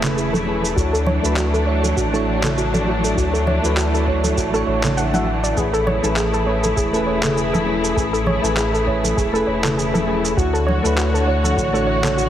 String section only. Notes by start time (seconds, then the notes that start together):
Already playing: E3 A3 E4 G#4
0.77 F#3 D4
5.57 E4 G#4
10.38 D3 A3 F#4 C#5